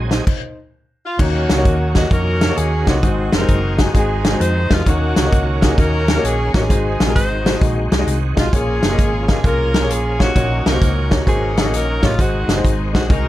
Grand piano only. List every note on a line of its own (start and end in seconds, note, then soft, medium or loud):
0.11 0.56 D#4 soft
0.11 0.55 C5 medium
1.18 1.91 D#3 medium
1.18 1.41 A#3 medium
1.18 1.42 D#4 medium
1.18 1.42 F#4 medium
1.18 1.42 C#5 medium
1.56 1.72 A#3 medium
1.56 1.72 D#4 medium
1.56 1.73 F#4 medium
1.56 1.73 C#5 medium
1.94 2.03 A#3 medium
1.94 2.03 D#4 medium
1.94 2.03 F#4 medium
1.94 2.04 D#5 medium
2.10 2.33 A#3 medium
2.10 2.34 D#4 medium
2.10 2.34 F#4 medium
2.10 2.34 D#5 medium
2.48 2.64 A#3 medium
2.48 2.64 D#4 medium
2.48 2.65 F#4 medium
2.48 2.65 C#5 medium
2.86 2.95 A#3 medium
2.86 2.95 D#4 medium
2.86 2.95 F#4 medium
2.86 2.95 C#5 medium
3.02 3.75 G#2 medium
3.02 3.25 G#3 medium
3.02 3.26 D#4 medium
3.02 3.26 F#4 medium
3.02 3.26 C5 medium
3.39 3.56 G#3 medium
3.39 3.56 D#4 medium
3.39 3.56 F#4 medium
3.39 3.57 C5 medium
3.77 3.86 G#3 medium
3.77 3.86 D#4 medium
3.77 3.87 F#4 medium
3.77 3.87 G#4 medium
3.94 4.17 G#3 medium
3.94 4.17 D#4 medium
3.94 4.17 F#4 medium
3.94 4.18 G#4 medium
4.32 4.48 G#3 medium
4.32 4.48 D#4 medium
4.32 4.48 F#4 medium
4.32 4.49 C5 medium
4.70 4.78 G#3 medium
4.70 4.79 D#4 medium
4.70 4.79 F#4 medium
4.70 4.79 A#4 medium
4.86 5.59 D#3 medium
4.86 5.09 A#3 medium
4.86 5.09 D#4 medium
4.86 5.10 F#4 medium
4.86 5.10 C#5 medium
5.24 5.40 A#3 medium
5.24 5.40 D#4 medium
5.24 5.40 F#4 medium
5.24 5.41 D#5 medium
5.61 5.70 A#3 medium
5.61 5.70 D#4 medium
5.61 5.70 F#4 medium
5.61 5.71 G#4 medium
5.77 6.00 A#3 medium
5.77 6.00 D#4 medium
5.77 6.01 F#4 medium
5.77 6.01 A#4 medium
6.16 6.31 A#3 medium
6.16 6.32 D#4 medium
6.16 6.32 F#4 medium
6.16 6.32 C#5 medium
6.54 6.62 A#3 medium
6.54 6.62 D#4 medium
6.54 6.62 F#4 medium
6.54 6.63 C#5 medium
6.69 7.42 G#2 medium
6.69 6.92 G#3 medium
6.69 6.92 D#4 medium
6.69 6.93 F#4 medium
6.69 6.93 C5 medium
7.07 7.23 G#3 medium
7.07 7.23 D#4 medium
7.07 7.23 F#4 medium
7.07 7.24 G#4 medium
7.45 7.53 G#3 medium
7.45 7.53 D#4 medium
7.45 7.53 F#4 medium
7.45 7.54 C5 medium
7.60 7.83 G#3 medium
7.60 7.84 D#4 medium
7.60 7.84 F#4 medium
7.60 7.84 D#5 medium
7.99 8.14 G#3 medium
7.99 8.15 D#4 medium
7.99 8.15 F#4 medium
7.99 8.15 D#5 medium
8.36 8.44 G#3 medium
8.36 8.45 D#4 medium
8.36 8.45 F#4 medium
8.36 8.45 D#5 medium
8.52 9.25 A#2 medium
8.52 8.75 A#3 medium
8.52 8.75 F4 medium
8.52 8.76 G#4 medium
8.52 8.76 C#5 medium
8.90 9.06 A#3 medium
8.90 9.06 F4 medium
8.90 9.06 G#4 medium
8.90 9.07 D#5 medium
9.28 9.36 A#3 medium
9.28 9.36 F4 medium
9.28 9.37 G#4 medium
9.28 9.37 D#5 medium
9.43 9.66 A#3 medium
9.43 9.67 F4 medium
9.43 9.67 G#4 medium
9.43 9.67 A#4 medium
9.81 9.97 A#3 medium
9.81 9.97 F4 medium
9.81 9.98 G#4 medium
9.81 9.98 C#5 medium
10.19 10.27 A#3 medium
10.19 10.27 F4 medium
10.19 10.28 G#4 medium
10.19 10.28 C#5 medium
10.34 11.07 A#2 medium
10.34 10.58 A#3 medium
10.34 10.58 D#4 medium
10.34 10.58 F#4 medium
10.34 10.58 C#5 medium
10.72 10.88 A#3 medium
10.72 10.88 D#4 medium
10.72 10.89 F#4 medium
10.72 10.89 C5 medium
11.10 11.18 A#3 medium
11.10 11.19 D#4 medium
11.10 11.19 F#4 medium
11.10 11.19 C#5 medium
11.25 11.49 A#3 medium
11.25 11.49 D#4 medium
11.25 11.49 F#4 medium
11.25 11.50 C5 medium
11.63 11.79 A#3 medium
11.63 11.80 D#4 medium
11.63 11.80 F#4 medium
11.63 11.80 D#5 medium
12.01 12.10 A#3 medium
12.01 12.10 D#4 medium
12.01 12.10 F#4 medium
12.01 12.11 C#5 medium
12.18 12.90 G#2 medium
12.18 12.41 G#3 medium
12.18 12.41 D#4 medium
12.18 12.41 F#4 medium
12.18 12.41 C5 medium
12.55 12.71 G#3 medium
12.55 12.72 D#4 medium
12.55 12.72 F#4 medium
12.55 12.72 C5 medium
12.93 13.01 G#3 medium
12.93 13.02 D#4 medium
12.93 13.02 F#4 medium
12.93 13.03 C5 medium
13.09 13.28 G#3 medium
13.09 13.28 D#4 medium
13.09 13.28 F#4 medium
13.09 13.28 A#4 medium